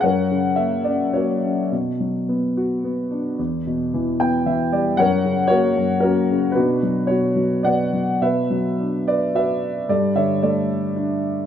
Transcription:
<<
  \new Staff \with { instrumentName = "Grand piano" } { \time 3/4 \key b \minor \tempo 4 = 110 << { fis''4 e''8 d''8 cis''8. r16 | r2. | r4. g''8 e''8 d''8 | fis''4 cis''4 ais'4 |
b'4 cis''4 <d'' fis''>4 | e''4. d''8 e''4 | d''8 e''8 d''4 r4 | } \\ { <ais' cis''>4. r8 <fis' ais'>4 | r2. | r2. | <ais' cis''>4 <fis' ais'>4 <cis' fis'>4 |
<d' fis'>4 fis'4 <fis' b' d''>4 | b'4. b'8 b'4 | a'8 cis''8 a'4 r4 | } >> }
  \new Staff \with { instrumentName = "Grand piano" } { \clef bass \time 3/4 \key b \minor fis,8 cis8 ais8 cis'8 ais8 cis'8 | b,8 fis8 b8 fis'8 b8 d'8 | e,8 b,8 e8 b8 e8 g8 | fis,8 cis8 ais8 fis,8 ais8 cis8 |
b,8 fis8 b,8 fis8 b,8 fis8 | b,8 fis8 d'4 fis'4 | g,8 d8 a4 d'4 | }
>>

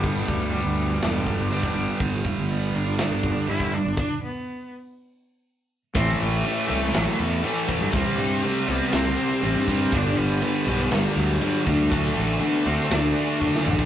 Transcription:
<<
  \new Staff \with { instrumentName = "Clean electric guitar" } { \time 4/4 \key g \major \tempo 4 = 121 <g, d g b d' g'>8 <g b d' g'>8 <g b d' g'>4 <g, d g b d' g'>8 <g b d' g'>8 <g b d' g'>8 <g b d' g'>8 | r1 | r1 | r1 |
r1 | r1 | r1 | }
  \new Staff \with { instrumentName = "Cello" } { \time 4/4 \key g \major g8 g2 r4. | r8 a8 b8 d'8 d'4 e'8 d'8 | d'8 b4 r2 r8 | c'8 a4. fis8 e4~ e16 fis16 |
e8 g8 a8 b8 c'4. r8 | d'8 b4. g8 fis4~ fis16 g16 | fis8 a8 b8 c'8 d'4. r8 | }
  \new Staff \with { instrumentName = "Distorted electric guitar" } { \clef bass \time 4/4 \key g \major r1 | r1 | r1 | <a, e a>4 <a, e a>8 <a, e a>8 <a, e a>4 <a, e a>8 <a, e a>8 |
<c g c'>4 <c g c'>8 <c g c'>8 <c g c'>4 <c g c'>8 <c g c'>8 | <g, d g>4 <g, d g>8 <g, d g>8 <g, d g>4 <g, d g>8 <d a d'>8 | <d a d'>4 <d a d'>8 <d a d'>8 <d a d'>4 <d a d'>8 <d a d'>8 | }
  \new Staff \with { instrumentName = "Distorted electric guitar" } { \clef bass \time 4/4 \key g \major <g, d g>2. <g, d g>8 <g, d g>8~ | <g, d g>2. <g, d g>8 r8 | r1 | <a, e a>4 <a, e a>8 <a, e a>8 <a, e a>4 <a, e a>8 <a, e a>8 |
<c g c'>4 <c g c'>8 <c g c'>8 <c g c'>4 <c g c'>8 <c g c'>8 | <g, d g>4 <g, d g>8 <g, d g>8 <g, d g>4 <g, d g>8 <d a d'>8 | <d a d'>4 <d a d'>8 <d a d'>8 <d a d'>4 <d a d'>8 <d a d'>8 | }
  \new Staff \with { instrumentName = "Fingered electric bass" } { \clef bass \time 4/4 \key g \major g,,8 d,8. d,8. e,,8. g,,8 r16 g,,16 r16 | g,,8 r16 g,,8. g,,8 r16 g,,8 r16 g,8. g,,16 | r1 | a,,8 a,,8 r8 c,8 a,,16 r16 e,8 r8. g,16 |
c,16 r16 g,8 r8 c,16 r16 c,8 r8 a,,16 g,8. | g,,8 g,,8 r8 b,,8 g,,16 r16 d,8 r8 d,8~ | d,8 a,,8 r8 d,16 r16 d,8 r8 fis,,8 a,,8 | }
  \new DrumStaff \with { instrumentName = "Drums" } \drummode { \time 4/4 <hho bd>16 sn16 bd8 hho4 <hho sn>8 bd8 hho16 bd8. | <hho bd>16 sn16 bd8 hho4 <hho sn>8 bd8 hho16 bd8. | <cymc bd>4 r4 r4 r4 | <cymc bd>8 cymc8 cymc8 cymc8 <cymc sn>8 cymc8 cymc8 <cymc bd>8 |
<cymc bd>8 cymc8 cymc8 cymc8 <cymc sn>8 cymc8 cymc8 <cymc bd sn>8 | <cymc bd>8 cymc8 cymc8 cymc8 <cymc sn>8 cymc8 cymc8 <cymc bd>8 | <cymc bd>8 cymc8 cymc8 cymc8 <cymc sn>8 cymc8 bd16 sn16 toml16 bd16 | }
>>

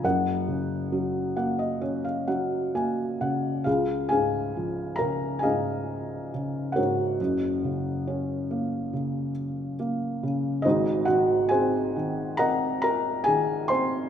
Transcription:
<<
  \new Staff \with { instrumentName = "Felt piano" } { \time 4/4 \key fis \major \tempo 4 = 68 << { <ais' fis''>2. r4 | \key des \major <f' aes' f''>8 <aes' f'' aes''>4 <bes' bes''>8 <aes' ees'' f'' aes''>4. <ges' bes' des'' ges''>8~ | <ges' bes' des'' ges''>2~ <ges' bes' des'' ges''>8 r4. | <ees' ges' c'' ees''>8 <ges' ges''>8 <aes' c'' aes''>4 <bes' ees'' ges'' bes''>8 <bes' bes''>8 <aes' aes''>8 <c'' c'''>8 | } \\ { r4. fis''16 dis''16 cis''16 eis''16 fis''8 gis''8 fis''8 | r1 | r1 | r1 | } >> }
  \new Staff \with { instrumentName = "Felt piano" } { \clef bass \time 4/4 \key fis \major <fis,, fis,>8 cis8 fis8 ais8 cis'8 fis8 ais8 cis8 | \key des \major des,8 aes,8 f8 des8 aes,4 des8 aes,8 | <ges,, ges,>8 des8 des'8 bes8 des4 bes8 des8 | <aes,, aes,>8 ees8 c'8 ees8 c'4 ees8 c'8 | }
>>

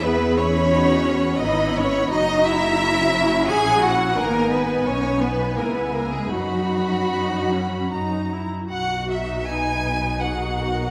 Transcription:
<<
  \new Staff \with { instrumentName = "Violin section" } { \time 3/4 \key b \major \tempo 4 = 85 b''2 b''4 | ais''2 fis''4 | gis''2 gis''4 | b''2 ais''8 r8 |
fis''8 e''8 gis''4 fis''4 | }
  \new Staff \with { instrumentName = "Violin section" } { \time 3/4 \key b \major << { b'8 cis''4. dis''8 cis''8 | dis''8 e''4. gis''8 fis''8 | ais'8 b'8 cis''8 b'8 ais'16 b'16 ais'16 gis'16 | fis'2~ fis'8 r8 |
fis'4 b'4 gis'8 ais'8 | } \\ { r2. | r2. | r2. | r2. |
dis'2 dis'4 | } >> }
  \new Staff \with { instrumentName = "Viola section" } { \time 3/4 \key b \major << { gis'4 fis'4 e'4 | fis'4 fis'4 e'4 | dis'4 dis'4 e'4 | fis'4 dis'8 cis'8 dis'8 e'8 |
fis'4 dis'4 fis'4 | } \\ { e'4 dis'8 cis'8 b4 | dis'4 cis'2 | b2. | dis'4 r2 |
r2. | } >> }
  \new Staff \with { instrumentName = "Cello section" } { \time 3/4 \key b \major b8 cis'4. dis'8 cis'8 | dis'8 e'4. gis'8 fis'8 | ais8 b8 cis'8 b8 ais16 b16 ais16 gis16 | fis2~ fis8 r8 |
b,2. | }
  \new Staff \with { instrumentName = "Double bass section" } { \clef bass \time 3/4 \key b \major e,2 gis,,4 | fis,,2 ais,,4 | gis,,4 b,,4 cis,4 | fis,2 fis,8 r8 |
b,,2. | }
>>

